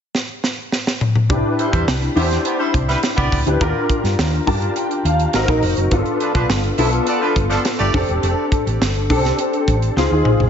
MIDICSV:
0, 0, Header, 1, 5, 480
1, 0, Start_track
1, 0, Key_signature, 0, "major"
1, 0, Tempo, 578035
1, 1076, Time_signature, 4, 2, 24, 8
1, 8718, End_track
2, 0, Start_track
2, 0, Title_t, "Grand piano"
2, 0, Program_c, 0, 0
2, 1074, Note_on_c, 0, 62, 74
2, 1076, Note_on_c, 0, 64, 64
2, 1081, Note_on_c, 0, 67, 69
2, 1085, Note_on_c, 0, 71, 78
2, 1227, Control_c, 0, 64, 127
2, 1658, Note_off_c, 0, 62, 0
2, 1658, Note_off_c, 0, 64, 0
2, 1661, Note_off_c, 0, 67, 0
2, 1663, Note_off_c, 0, 71, 0
2, 1789, Note_on_c, 0, 62, 80
2, 1793, Note_on_c, 0, 64, 71
2, 1795, Note_on_c, 0, 67, 72
2, 1799, Note_on_c, 0, 72, 91
2, 2569, Note_off_c, 0, 62, 0
2, 2571, Note_off_c, 0, 64, 0
2, 2572, Note_off_c, 0, 67, 0
2, 2574, Note_off_c, 0, 72, 0
2, 2873, Note_on_c, 0, 62, 71
2, 2876, Note_on_c, 0, 64, 67
2, 2879, Note_on_c, 0, 67, 67
2, 2884, Note_on_c, 0, 71, 76
2, 2971, Note_off_c, 0, 62, 0
2, 2973, Note_off_c, 0, 64, 0
2, 2974, Note_off_c, 0, 67, 0
2, 2977, Note_off_c, 0, 71, 0
2, 2992, Note_on_c, 0, 62, 73
2, 2997, Note_on_c, 0, 65, 71
2, 3000, Note_on_c, 0, 67, 72
2, 3001, Note_on_c, 0, 70, 91
2, 3004, Control_c, 0, 64, 0
2, 3161, Control_c, 0, 64, 127
2, 3576, Note_off_c, 0, 62, 0
2, 3579, Note_off_c, 0, 65, 0
2, 3580, Note_off_c, 0, 67, 0
2, 3581, Note_off_c, 0, 70, 0
2, 3707, Note_on_c, 0, 62, 78
2, 3712, Note_on_c, 0, 81, 69
2, 3713, Note_on_c, 0, 65, 70
2, 3716, Note_on_c, 0, 67, 78
2, 3720, Note_on_c, 0, 70, 82
2, 3937, Note_off_c, 0, 81, 0
2, 3950, Note_on_c, 0, 79, 70
2, 4175, Note_off_c, 0, 79, 0
2, 4194, Note_on_c, 0, 77, 67
2, 4391, Note_off_c, 0, 62, 0
2, 4394, Note_off_c, 0, 65, 0
2, 4395, Note_off_c, 0, 67, 0
2, 4397, Note_off_c, 0, 70, 0
2, 4418, Note_off_c, 0, 77, 0
2, 4428, Note_on_c, 0, 60, 84
2, 4432, Note_on_c, 0, 63, 75
2, 4435, Note_on_c, 0, 66, 79
2, 4435, Note_on_c, 0, 75, 69
2, 4441, Note_on_c, 0, 70, 93
2, 4447, Control_c, 0, 64, 0
2, 4529, Note_off_c, 0, 60, 0
2, 4531, Note_off_c, 0, 63, 0
2, 4532, Note_off_c, 0, 66, 0
2, 4535, Note_off_c, 0, 70, 0
2, 4548, Note_on_c, 0, 60, 76
2, 4553, Note_on_c, 0, 63, 73
2, 4554, Note_on_c, 0, 66, 74
2, 4557, Note_on_c, 0, 70, 83
2, 4594, Control_c, 0, 64, 127
2, 4843, Note_off_c, 0, 60, 0
2, 4845, Note_off_c, 0, 63, 0
2, 4846, Note_off_c, 0, 66, 0
2, 4847, Note_off_c, 0, 70, 0
2, 4882, Note_off_c, 0, 75, 0
2, 4907, Note_on_c, 0, 59, 77
2, 4911, Note_on_c, 0, 62, 68
2, 4915, Note_on_c, 0, 65, 77
2, 4918, Note_on_c, 0, 69, 78
2, 4927, Control_c, 0, 64, 0
2, 5062, Control_c, 0, 64, 127
2, 5494, Note_off_c, 0, 59, 0
2, 5496, Note_off_c, 0, 62, 0
2, 5498, Note_off_c, 0, 65, 0
2, 5499, Note_off_c, 0, 69, 0
2, 5625, Note_on_c, 0, 59, 80
2, 5632, Note_on_c, 0, 62, 74
2, 5632, Note_on_c, 0, 65, 75
2, 5637, Note_on_c, 0, 69, 88
2, 6407, Note_off_c, 0, 59, 0
2, 6411, Note_off_c, 0, 62, 0
2, 6411, Note_off_c, 0, 65, 0
2, 6413, Note_off_c, 0, 69, 0
2, 6586, Note_on_c, 0, 60, 82
2, 6588, Note_on_c, 0, 62, 74
2, 6594, Note_on_c, 0, 67, 75
2, 6595, Note_on_c, 0, 69, 86
2, 6607, Control_c, 0, 64, 0
2, 6763, Control_c, 0, 64, 127
2, 7368, Note_off_c, 0, 60, 0
2, 7369, Note_off_c, 0, 62, 0
2, 7372, Note_off_c, 0, 67, 0
2, 7373, Note_off_c, 0, 69, 0
2, 7550, Note_on_c, 0, 60, 84
2, 7553, Note_on_c, 0, 62, 71
2, 7556, Note_on_c, 0, 67, 73
2, 7561, Note_on_c, 0, 69, 90
2, 8233, Note_off_c, 0, 60, 0
2, 8235, Note_off_c, 0, 62, 0
2, 8236, Note_off_c, 0, 67, 0
2, 8239, Note_off_c, 0, 69, 0
2, 8273, Note_on_c, 0, 60, 78
2, 8275, Note_on_c, 0, 63, 76
2, 8280, Note_on_c, 0, 65, 73
2, 8283, Note_on_c, 0, 68, 88
2, 8288, Control_c, 0, 64, 0
2, 8372, Note_off_c, 0, 60, 0
2, 8373, Note_off_c, 0, 63, 0
2, 8375, Note_off_c, 0, 65, 0
2, 8377, Note_off_c, 0, 68, 0
2, 8394, Note_on_c, 0, 60, 70
2, 8396, Note_on_c, 0, 63, 67
2, 8400, Note_on_c, 0, 65, 69
2, 8406, Note_on_c, 0, 68, 90
2, 8409, Control_c, 0, 64, 127
2, 8687, Note_off_c, 0, 60, 0
2, 8688, Note_off_c, 0, 63, 0
2, 8690, Note_off_c, 0, 65, 0
2, 8693, Note_off_c, 0, 68, 0
2, 8718, End_track
3, 0, Start_track
3, 0, Title_t, "Horn section"
3, 0, Program_c, 1, 61
3, 1315, Note_on_c, 1, 55, 74
3, 1316, Note_on_c, 1, 64, 74
3, 1316, Note_on_c, 1, 72, 81
3, 1412, Note_off_c, 1, 55, 0
3, 1412, Note_off_c, 1, 64, 0
3, 1412, Note_off_c, 1, 72, 0
3, 1430, Note_on_c, 1, 55, 73
3, 1430, Note_on_c, 1, 72, 80
3, 1433, Note_on_c, 1, 64, 75
3, 1529, Note_off_c, 1, 55, 0
3, 1529, Note_off_c, 1, 72, 0
3, 1530, Note_off_c, 1, 64, 0
3, 1792, Note_on_c, 1, 67, 77
3, 1793, Note_on_c, 1, 76, 85
3, 1794, Note_on_c, 1, 59, 79
3, 1889, Note_off_c, 1, 67, 0
3, 1890, Note_off_c, 1, 76, 0
3, 1891, Note_off_c, 1, 59, 0
3, 2036, Note_on_c, 1, 59, 77
3, 2037, Note_on_c, 1, 67, 73
3, 2039, Note_on_c, 1, 74, 79
3, 2132, Note_off_c, 1, 59, 0
3, 2132, Note_off_c, 1, 67, 0
3, 2133, Note_off_c, 1, 74, 0
3, 2150, Note_on_c, 1, 55, 84
3, 2151, Note_on_c, 1, 64, 82
3, 2151, Note_on_c, 1, 72, 86
3, 2248, Note_off_c, 1, 55, 0
3, 2249, Note_off_c, 1, 64, 0
3, 2249, Note_off_c, 1, 72, 0
3, 2391, Note_on_c, 1, 55, 90
3, 2391, Note_on_c, 1, 64, 88
3, 2393, Note_on_c, 1, 71, 104
3, 2489, Note_off_c, 1, 55, 0
3, 2489, Note_off_c, 1, 64, 0
3, 2490, Note_off_c, 1, 71, 0
3, 2629, Note_on_c, 1, 59, 90
3, 2629, Note_on_c, 1, 74, 103
3, 2630, Note_on_c, 1, 67, 93
3, 2823, Note_off_c, 1, 59, 0
3, 2823, Note_off_c, 1, 74, 0
3, 2824, Note_off_c, 1, 67, 0
3, 5144, Note_on_c, 1, 71, 81
3, 5146, Note_on_c, 1, 53, 73
3, 5148, Note_on_c, 1, 62, 79
3, 5245, Note_off_c, 1, 53, 0
3, 5245, Note_off_c, 1, 71, 0
3, 5247, Note_off_c, 1, 62, 0
3, 5267, Note_on_c, 1, 53, 79
3, 5268, Note_on_c, 1, 62, 76
3, 5268, Note_on_c, 1, 71, 87
3, 5366, Note_off_c, 1, 53, 0
3, 5367, Note_off_c, 1, 62, 0
3, 5367, Note_off_c, 1, 71, 0
3, 5630, Note_on_c, 1, 64, 81
3, 5630, Note_on_c, 1, 76, 92
3, 5631, Note_on_c, 1, 72, 78
3, 5728, Note_off_c, 1, 64, 0
3, 5728, Note_off_c, 1, 76, 0
3, 5729, Note_off_c, 1, 72, 0
3, 5871, Note_on_c, 1, 69, 77
3, 5871, Note_on_c, 1, 74, 89
3, 5872, Note_on_c, 1, 59, 78
3, 5968, Note_off_c, 1, 69, 0
3, 5969, Note_off_c, 1, 59, 0
3, 5969, Note_off_c, 1, 74, 0
3, 5988, Note_on_c, 1, 53, 78
3, 5988, Note_on_c, 1, 62, 80
3, 5989, Note_on_c, 1, 71, 93
3, 6087, Note_off_c, 1, 53, 0
3, 6087, Note_off_c, 1, 62, 0
3, 6088, Note_off_c, 1, 71, 0
3, 6223, Note_on_c, 1, 69, 93
3, 6224, Note_on_c, 1, 53, 92
3, 6224, Note_on_c, 1, 62, 91
3, 6324, Note_off_c, 1, 53, 0
3, 6324, Note_off_c, 1, 62, 0
3, 6324, Note_off_c, 1, 69, 0
3, 6466, Note_on_c, 1, 74, 102
3, 6469, Note_on_c, 1, 57, 92
3, 6469, Note_on_c, 1, 67, 91
3, 6662, Note_off_c, 1, 74, 0
3, 6664, Note_off_c, 1, 57, 0
3, 6664, Note_off_c, 1, 67, 0
3, 8718, End_track
4, 0, Start_track
4, 0, Title_t, "Fingered electric bass"
4, 0, Program_c, 2, 33
4, 1081, Note_on_c, 2, 36, 91
4, 1163, Note_off_c, 2, 36, 0
4, 1441, Note_on_c, 2, 40, 74
4, 1523, Note_off_c, 2, 40, 0
4, 1556, Note_on_c, 2, 36, 74
4, 1724, Note_off_c, 2, 36, 0
4, 1794, Note_on_c, 2, 40, 85
4, 1963, Note_off_c, 2, 40, 0
4, 2279, Note_on_c, 2, 36, 89
4, 2446, Note_off_c, 2, 36, 0
4, 2638, Note_on_c, 2, 36, 80
4, 2721, Note_off_c, 2, 36, 0
4, 2761, Note_on_c, 2, 37, 75
4, 2843, Note_off_c, 2, 37, 0
4, 2874, Note_on_c, 2, 38, 82
4, 2959, Note_off_c, 2, 38, 0
4, 3000, Note_on_c, 2, 39, 84
4, 3082, Note_off_c, 2, 39, 0
4, 3353, Note_on_c, 2, 43, 70
4, 3438, Note_off_c, 2, 43, 0
4, 3475, Note_on_c, 2, 39, 78
4, 3643, Note_off_c, 2, 39, 0
4, 3715, Note_on_c, 2, 43, 88
4, 3883, Note_off_c, 2, 43, 0
4, 4191, Note_on_c, 2, 39, 93
4, 4360, Note_off_c, 2, 39, 0
4, 4431, Note_on_c, 2, 32, 89
4, 4516, Note_off_c, 2, 32, 0
4, 4552, Note_on_c, 2, 34, 88
4, 4637, Note_off_c, 2, 34, 0
4, 4670, Note_on_c, 2, 29, 92
4, 4756, Note_off_c, 2, 29, 0
4, 4793, Note_on_c, 2, 30, 83
4, 4878, Note_off_c, 2, 30, 0
4, 4912, Note_on_c, 2, 31, 91
4, 4997, Note_off_c, 2, 31, 0
4, 5272, Note_on_c, 2, 35, 72
4, 5357, Note_off_c, 2, 35, 0
4, 5393, Note_on_c, 2, 31, 96
4, 5562, Note_off_c, 2, 31, 0
4, 5631, Note_on_c, 2, 35, 92
4, 5800, Note_off_c, 2, 35, 0
4, 6111, Note_on_c, 2, 31, 88
4, 6280, Note_off_c, 2, 31, 0
4, 6476, Note_on_c, 2, 31, 80
4, 6560, Note_off_c, 2, 31, 0
4, 6594, Note_on_c, 2, 29, 87
4, 6678, Note_off_c, 2, 29, 0
4, 6716, Note_on_c, 2, 28, 80
4, 6800, Note_off_c, 2, 28, 0
4, 6834, Note_on_c, 2, 29, 105
4, 6918, Note_off_c, 2, 29, 0
4, 7196, Note_on_c, 2, 33, 73
4, 7280, Note_off_c, 2, 33, 0
4, 7317, Note_on_c, 2, 31, 78
4, 7559, Note_on_c, 2, 36, 85
4, 7571, Note_off_c, 2, 31, 0
4, 7726, Note_off_c, 2, 36, 0
4, 8037, Note_on_c, 2, 33, 84
4, 8205, Note_off_c, 2, 33, 0
4, 8274, Note_on_c, 2, 37, 92
4, 8359, Note_off_c, 2, 37, 0
4, 8396, Note_on_c, 2, 39, 82
4, 8480, Note_off_c, 2, 39, 0
4, 8515, Note_on_c, 2, 34, 88
4, 8599, Note_off_c, 2, 34, 0
4, 8636, Note_on_c, 2, 35, 73
4, 8718, Note_off_c, 2, 35, 0
4, 8718, End_track
5, 0, Start_track
5, 0, Title_t, "Drums"
5, 122, Note_on_c, 9, 38, 72
5, 205, Note_off_c, 9, 38, 0
5, 363, Note_on_c, 9, 38, 72
5, 446, Note_off_c, 9, 38, 0
5, 601, Note_on_c, 9, 38, 74
5, 684, Note_off_c, 9, 38, 0
5, 725, Note_on_c, 9, 38, 87
5, 808, Note_off_c, 9, 38, 0
5, 840, Note_on_c, 9, 45, 93
5, 923, Note_off_c, 9, 45, 0
5, 959, Note_on_c, 9, 45, 90
5, 1042, Note_off_c, 9, 45, 0
5, 1079, Note_on_c, 9, 36, 117
5, 1079, Note_on_c, 9, 42, 75
5, 1162, Note_off_c, 9, 36, 0
5, 1162, Note_off_c, 9, 42, 0
5, 1321, Note_on_c, 9, 42, 62
5, 1404, Note_off_c, 9, 42, 0
5, 1438, Note_on_c, 9, 36, 83
5, 1442, Note_on_c, 9, 42, 51
5, 1521, Note_off_c, 9, 36, 0
5, 1525, Note_off_c, 9, 42, 0
5, 1561, Note_on_c, 9, 38, 105
5, 1561, Note_on_c, 9, 42, 74
5, 1644, Note_off_c, 9, 38, 0
5, 1645, Note_off_c, 9, 42, 0
5, 1677, Note_on_c, 9, 42, 32
5, 1760, Note_off_c, 9, 42, 0
5, 1799, Note_on_c, 9, 46, 70
5, 1882, Note_off_c, 9, 46, 0
5, 1919, Note_on_c, 9, 42, 47
5, 1922, Note_on_c, 9, 38, 33
5, 2002, Note_off_c, 9, 42, 0
5, 2005, Note_off_c, 9, 38, 0
5, 2035, Note_on_c, 9, 42, 86
5, 2118, Note_off_c, 9, 42, 0
5, 2276, Note_on_c, 9, 36, 80
5, 2280, Note_on_c, 9, 42, 74
5, 2359, Note_off_c, 9, 36, 0
5, 2363, Note_off_c, 9, 42, 0
5, 2399, Note_on_c, 9, 42, 38
5, 2404, Note_on_c, 9, 38, 31
5, 2482, Note_off_c, 9, 42, 0
5, 2487, Note_off_c, 9, 38, 0
5, 2516, Note_on_c, 9, 42, 91
5, 2520, Note_on_c, 9, 38, 88
5, 2599, Note_off_c, 9, 42, 0
5, 2603, Note_off_c, 9, 38, 0
5, 2633, Note_on_c, 9, 42, 34
5, 2638, Note_on_c, 9, 36, 98
5, 2716, Note_off_c, 9, 42, 0
5, 2721, Note_off_c, 9, 36, 0
5, 2758, Note_on_c, 9, 46, 68
5, 2760, Note_on_c, 9, 36, 90
5, 2841, Note_off_c, 9, 46, 0
5, 2843, Note_off_c, 9, 36, 0
5, 2878, Note_on_c, 9, 42, 51
5, 2961, Note_off_c, 9, 42, 0
5, 2997, Note_on_c, 9, 36, 123
5, 2998, Note_on_c, 9, 42, 78
5, 3080, Note_off_c, 9, 36, 0
5, 3081, Note_off_c, 9, 42, 0
5, 3235, Note_on_c, 9, 36, 85
5, 3239, Note_on_c, 9, 42, 66
5, 3318, Note_off_c, 9, 36, 0
5, 3322, Note_off_c, 9, 42, 0
5, 3361, Note_on_c, 9, 42, 52
5, 3362, Note_on_c, 9, 38, 36
5, 3444, Note_off_c, 9, 42, 0
5, 3445, Note_off_c, 9, 38, 0
5, 3479, Note_on_c, 9, 38, 103
5, 3479, Note_on_c, 9, 42, 75
5, 3562, Note_off_c, 9, 38, 0
5, 3562, Note_off_c, 9, 42, 0
5, 3715, Note_on_c, 9, 36, 83
5, 3716, Note_on_c, 9, 46, 66
5, 3798, Note_off_c, 9, 36, 0
5, 3799, Note_off_c, 9, 46, 0
5, 3837, Note_on_c, 9, 42, 50
5, 3920, Note_off_c, 9, 42, 0
5, 3952, Note_on_c, 9, 42, 80
5, 4035, Note_off_c, 9, 42, 0
5, 4077, Note_on_c, 9, 42, 34
5, 4160, Note_off_c, 9, 42, 0
5, 4197, Note_on_c, 9, 42, 74
5, 4280, Note_off_c, 9, 42, 0
5, 4314, Note_on_c, 9, 42, 40
5, 4397, Note_off_c, 9, 42, 0
5, 4429, Note_on_c, 9, 42, 87
5, 4433, Note_on_c, 9, 38, 89
5, 4512, Note_off_c, 9, 42, 0
5, 4516, Note_off_c, 9, 38, 0
5, 4553, Note_on_c, 9, 36, 97
5, 4636, Note_off_c, 9, 36, 0
5, 4672, Note_on_c, 9, 46, 73
5, 4755, Note_off_c, 9, 46, 0
5, 4790, Note_on_c, 9, 42, 51
5, 4873, Note_off_c, 9, 42, 0
5, 4910, Note_on_c, 9, 42, 83
5, 4912, Note_on_c, 9, 36, 108
5, 4993, Note_off_c, 9, 42, 0
5, 4995, Note_off_c, 9, 36, 0
5, 5029, Note_on_c, 9, 42, 37
5, 5112, Note_off_c, 9, 42, 0
5, 5152, Note_on_c, 9, 42, 67
5, 5235, Note_off_c, 9, 42, 0
5, 5272, Note_on_c, 9, 36, 86
5, 5274, Note_on_c, 9, 42, 49
5, 5355, Note_off_c, 9, 36, 0
5, 5357, Note_off_c, 9, 42, 0
5, 5394, Note_on_c, 9, 38, 105
5, 5395, Note_on_c, 9, 42, 75
5, 5477, Note_off_c, 9, 38, 0
5, 5478, Note_off_c, 9, 42, 0
5, 5510, Note_on_c, 9, 42, 33
5, 5593, Note_off_c, 9, 42, 0
5, 5630, Note_on_c, 9, 46, 66
5, 5713, Note_off_c, 9, 46, 0
5, 5751, Note_on_c, 9, 42, 50
5, 5834, Note_off_c, 9, 42, 0
5, 5868, Note_on_c, 9, 42, 82
5, 5951, Note_off_c, 9, 42, 0
5, 6112, Note_on_c, 9, 36, 81
5, 6114, Note_on_c, 9, 42, 70
5, 6195, Note_off_c, 9, 36, 0
5, 6197, Note_off_c, 9, 42, 0
5, 6231, Note_on_c, 9, 42, 38
5, 6236, Note_on_c, 9, 38, 30
5, 6314, Note_off_c, 9, 42, 0
5, 6319, Note_off_c, 9, 38, 0
5, 6352, Note_on_c, 9, 42, 88
5, 6356, Note_on_c, 9, 38, 90
5, 6435, Note_off_c, 9, 42, 0
5, 6439, Note_off_c, 9, 38, 0
5, 6468, Note_on_c, 9, 42, 36
5, 6551, Note_off_c, 9, 42, 0
5, 6593, Note_on_c, 9, 46, 70
5, 6594, Note_on_c, 9, 36, 98
5, 6676, Note_off_c, 9, 46, 0
5, 6677, Note_off_c, 9, 36, 0
5, 6714, Note_on_c, 9, 42, 52
5, 6797, Note_off_c, 9, 42, 0
5, 6836, Note_on_c, 9, 42, 81
5, 6919, Note_off_c, 9, 42, 0
5, 7074, Note_on_c, 9, 36, 98
5, 7078, Note_on_c, 9, 42, 63
5, 7157, Note_off_c, 9, 36, 0
5, 7161, Note_off_c, 9, 42, 0
5, 7201, Note_on_c, 9, 42, 50
5, 7284, Note_off_c, 9, 42, 0
5, 7321, Note_on_c, 9, 38, 96
5, 7321, Note_on_c, 9, 42, 75
5, 7404, Note_off_c, 9, 38, 0
5, 7405, Note_off_c, 9, 42, 0
5, 7435, Note_on_c, 9, 42, 31
5, 7519, Note_off_c, 9, 42, 0
5, 7556, Note_on_c, 9, 46, 70
5, 7557, Note_on_c, 9, 36, 78
5, 7640, Note_off_c, 9, 36, 0
5, 7640, Note_off_c, 9, 46, 0
5, 7681, Note_on_c, 9, 42, 49
5, 7684, Note_on_c, 9, 38, 34
5, 7764, Note_off_c, 9, 42, 0
5, 7767, Note_off_c, 9, 38, 0
5, 7794, Note_on_c, 9, 42, 76
5, 7877, Note_off_c, 9, 42, 0
5, 7917, Note_on_c, 9, 42, 34
5, 8000, Note_off_c, 9, 42, 0
5, 8037, Note_on_c, 9, 36, 73
5, 8040, Note_on_c, 9, 42, 73
5, 8120, Note_off_c, 9, 36, 0
5, 8123, Note_off_c, 9, 42, 0
5, 8157, Note_on_c, 9, 42, 41
5, 8240, Note_off_c, 9, 42, 0
5, 8279, Note_on_c, 9, 38, 49
5, 8362, Note_off_c, 9, 38, 0
5, 8513, Note_on_c, 9, 45, 81
5, 8596, Note_off_c, 9, 45, 0
5, 8636, Note_on_c, 9, 43, 79
5, 8718, Note_off_c, 9, 43, 0
5, 8718, End_track
0, 0, End_of_file